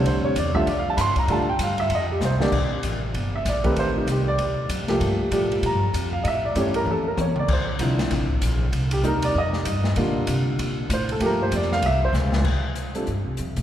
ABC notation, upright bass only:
X:1
M:4/4
L:1/8
Q:"Swing" 1/4=193
K:F
V:1 name="Upright bass" clef=bass
F,,2 E,,2 F,,2 G,, z | A,,2 G,,2 F,,2 C,,2 | B,,,2 A,,,2 G,,,2 B,,,2 | A,,,2 C,,2 D,,2 (3^F,, D,, C,, |
G,,2 A,,2 (3B,, G,, F,, F,,2 | A,,2 G,,2 F,,2 E,,2 | D,,2 C,,2 A,,,2 B,,,2 | C,,2 _E,,2 F,,2 G,,2 |
B,,2 C,2 B,,2 A,,2 | G,,2 F,,2 C,,2 _D,,2 | z4 G,, C,, F,, A,, |]